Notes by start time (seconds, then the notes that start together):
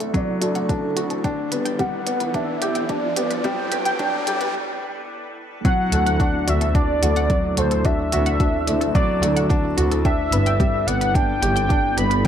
Already playing: F#3 A3 D4 E4 F#4 A4 D5 E5 F#5, riser
0.00 A4, closed hi-hat
0.14 F#3 F#4 D5, kick, closed hi-hat
0.41 D2 A3 F#4, closed hi-hat
0.55 F#5, closed hi-hat
0.69 D4 F#4 A4, kick, closed hi-hat
0.97 D2 F#4, closed hi-hat
1.10 A4, closed hi-hat
1.24 B3 D4 G4, kick, closed hi-hat
1.38 E4
1.51 G1 B3 B5, closed hi-hat
1.65 G5, closed hi-hat
1.79 G3 G4 F#5, kick, closed hi-hat
2.06 G1 B3 D5, closed hi-hat
2.20 B4, closed hi-hat
2.34 D4 G4 E5, kick, closed hi-hat
2.62 G1 G4, closed hi-hat
2.75 G5, closed hi-hat
2.89 D4 G4 D5, kick, closed hi-hat
3.16 G1 B3 G4, closed hi-hat
3.31 B4, closed hi-hat
3.44 G3 G4 G5, kick, closed hi-hat
3.72 G1 B3 B5, closed hi-hat
3.85 G5, closed hi-hat
3.99 D4 G4, kick, closed hi-hat
4.27 G1 G4 D5, closed hi-hat
4.41 B4, closed hi-hat
5.65 F#3 F#4 F#5, kick, closed hi-hat
5.88 D2 A4, closed hi-hat
5.93 A3 A5
6.06 F#5, closed hi-hat
6.10 D5
6.20 D4 F#4, kick, closed hi-hat
6.47 D2 F#4 D5 E5, closed hi-hat
6.61 A4, closed hi-hat
6.75 D4 F#4 D5, kick, closed hi-hat
6.96 A5
7.02 D2 A3 F#4, closed hi-hat
7.16 F#5, closed hi-hat
7.30 F#3 F#4, kick, closed hi-hat
7.57 D2 A3 F#4 C5, closed hi-hat
7.71 A4, closed hi-hat
7.85 D4 F#4 E5, kick, closed hi-hat
8.12 D2 F#4 A5, closed hi-hat
8.26 F#5, closed hi-hat
8.40 D4 F#4, kick, closed hi-hat
8.67 D2 A3 D5, closed hi-hat
8.81 A4, closed hi-hat
8.95 F#3 F#4 D5, kick, closed hi-hat
9.22 D2 A3 F#4, closed hi-hat
9.36 F#5, closed hi-hat
9.49 D4 F#4, kick, closed hi-hat
9.77 D2 F#4, closed hi-hat
9.92 A4, closed hi-hat
10.04 B3 D4 G4 E5, kick, closed hi-hat
10.32 G1 B3 B5, closed hi-hat
10.46 G5, closed hi-hat
10.60 G3 G4, kick, closed hi-hat
10.87 G1 B3 D5 F#5, closed hi-hat
11.01 B4, closed hi-hat
11.14 D4 G4 G5, kick, closed hi-hat
11.42 G1 G4, closed hi-hat
11.56 G5, closed hi-hat
11.69 D4 G4, kick, closed hi-hat
11.97 G1 B3 G4 B5, closed hi-hat
12.10 B4, closed hi-hat